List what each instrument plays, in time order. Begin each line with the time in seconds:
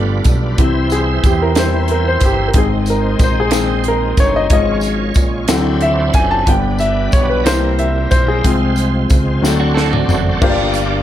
Already playing: analog synth bass G1, grand piano F3 A3 B3 A4, tonewheel organ G3 D4 F4 B4
0.24 analog synth bass B1, kick, closed hi-hat, tambourine
0.58 analog synth bass C2, grand piano E3 C4 G4, tonewheel organ E3 C4 E4 C5, kick, closed hi-hat
0.90 grand piano G#4, closed hi-hat, tambourine
1.24 analog synth bass E2, grand piano G4, kick, closed hi-hat, tambourine
1.42 grand piano A#4
1.55 grand piano E3 G3 C4 C5, snare, closed hi-hat, tambourine
1.88 grand piano A#4, closed hi-hat
2.08 grand piano C5
2.21 analog synth bass G1, kick, closed hi-hat, tambourine
2.25 grand piano G4
2.48 grand piano A#4
2.54 analog synth bass G#1, grand piano D#3 G#3 C4, tonewheel organ G#3 C4 D#4 C5, kick, closed hi-hat
2.58 grand piano G#4
2.86 closed hi-hat, tambourine
2.90 grand piano A#4
3.19 analog synth bass A#1, kick, closed hi-hat, tambourine
3.24 grand piano C5
3.40 grand piano G#4
3.51 grand piano D#3 G#3 C4, snare, closed hi-hat, tambourine
3.84 closed hi-hat
3.88 grand piano A#4
4.17 analog synth bass G1, grand piano C#5, kick, closed hi-hat, tambourine
4.36 grand piano D#5
4.49 analog synth bass G#1, grand piano F3 G#3 C#4 D#5, tonewheel organ G#3 C#4 D#4 C#5, kick, closed hi-hat
4.56 tonewheel organ F4
4.81 closed hi-hat, tambourine
5.14 analog synth bass A#1, kick, closed hi-hat, tambourine
5.48 analog synth bass D2, grand piano E3 F#3 C4, tonewheel organ F#3 D4 E4 C5, snare, closed hi-hat, tambourine
5.81 grand piano E5, closed hi-hat
6.14 analog synth bass F#1, grand piano G#5, kick, closed hi-hat, tambourine
6.31 grand piano A5
6.46 analog synth bass G1, grand piano D3 G3 B3 G5, tonewheel organ G3 B3 D4 B4, kick, closed hi-hat
6.78 grand piano E5, closed hi-hat, tambourine
7.12 analog synth bass B1, grand piano C#5, kick, closed hi-hat, tambourine
7.30 grand piano B4
7.44 analog synth bass C2, grand piano E3 G3 A#3 C5, tonewheel organ G3 C4 D#4 A#4, snare, closed hi-hat, tambourine
7.50 tonewheel organ E4
7.79 grand piano E5, closed hi-hat
8.11 analog synth bass B1, grand piano C5, kick, closed hi-hat, tambourine
8.28 grand piano G#4
8.43 analog synth bass C2, grand piano F3 G#3 C4, tonewheel organ G#3 C4 F4 C5, kick, closed hi-hat
8.76 closed hi-hat, tambourine
9.10 analog synth bass C#2, kick, closed hi-hat, tambourine
9.42 analog synth bass D2, grand piano F#3 A3 C4, tonewheel organ A3 D4 F#4 C5, snare, tambourine
9.60 clean electric guitar D4 F#4
9.74 clean electric guitar F#4 A4, snare
9.91 clean electric guitar D4 F#4, mid tom
10.08 analog synth bass F#1, floor tom, tambourine
10.42 analog synth bass G1, grand piano G2 A#3 D4 F4 G4 C5, tonewheel organ A#3 D4 F4 G4 D5, kick, crash
10.50 grand piano D5
10.73 closed hi-hat, tambourine